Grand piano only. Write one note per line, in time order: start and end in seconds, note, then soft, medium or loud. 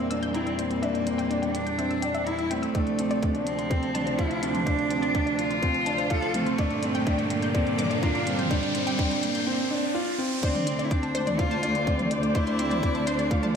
0.11 0.33 D4 medium
0.35 0.57 E4 medium
0.59 0.81 C4 medium
0.82 1.04 D4 medium
1.07 1.28 C4 medium
1.30 1.74 D4 medium
1.79 2.01 C4 medium
2.03 2.25 D4 medium
2.27 2.49 E4 medium
2.51 2.73 C4 medium
2.75 2.97 D4 medium
2.99 3.21 C4 medium
3.23 3.66 D4 medium
3.71 3.92 C4 medium
3.95 4.16 D4 medium
4.18 4.40 F4 medium
4.43 4.64 C4 medium
4.66 4.88 D4 loud
4.91 5.12 C4 medium
5.15 5.58 D4 medium
5.62 5.84 C4 medium
5.87 6.08 D4 medium
6.11 6.32 F4 medium
6.35 6.57 C4 medium
6.59 6.81 D4 loud
6.83 7.05 C4 medium
7.07 7.50 D4 medium
7.55 7.77 C4 medium
7.79 8.01 D4 medium
8.03 8.25 F4 medium
8.27 8.49 C4 medium
8.51 8.73 D4 loud
8.75 8.96 C4 medium
8.99 9.42 D4 medium
9.47 9.69 C4 medium
9.71 9.92 D4 medium
9.94 10.16 F4 medium
10.18 10.40 C4 medium
10.43 10.64 D4 loud
10.66 10.88 C4 medium
10.91 11.34 C4 medium
11.39 11.61 F4 medium
11.63 11.85 D4 medium
11.87 12.09 C4 medium
12.11 12.33 D4 medium
12.35 12.57 D4 medium
12.59 12.81 C4 medium
12.83 13.26 C4 medium
13.31 13.53 F4 medium